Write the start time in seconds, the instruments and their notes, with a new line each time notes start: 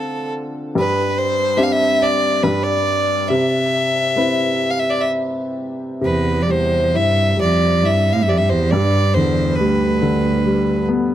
Already playing: upright piano D3 C4 D4 F4, fiddle A4
0.75 upright piano G2, fiddle B4
1.19 fiddle C5
1.57 upright piano C4 D4 G4, fiddle E5
1.64 fiddle F5
1.72 fiddle E5
2.02 fiddle D5
2.44 upright piano G2, fiddle B4
2.64 fiddle D5
3.29 upright piano C3, fiddle E5
4.16 upright piano C4 E4 B4
4.71 fiddle F5
4.80 fiddle E5
4.90 fiddle D5
5.01 fiddle E5
6.01 cello E2, upright piano C3
6.05 fiddle B4
6.41 cello F2, fiddle D5
6.48 cello E2, upright piano G3, fiddle C5
6.93 cello G2, upright piano E4, fiddle E5
7.37 cello F2, upright piano G3
7.41 fiddle D5
7.83 cello G2, upright piano E4, fiddle E5
8.13 cello A2, fiddle F5
8.22 cello G2, fiddle E5
8.28 cello F2, upright piano G4, fiddle D5
8.38 cello G2, fiddle E5
8.49 cello E2, fiddle C5
8.71 cello G2, upright piano G2, fiddle D5
9.14 cello E2, upright piano D3, fiddle C5
9.56 fiddle B4
9.60 cello D2, upright piano G3
10.02 upright piano D3
10.46 upright piano G3
10.89 upright piano B3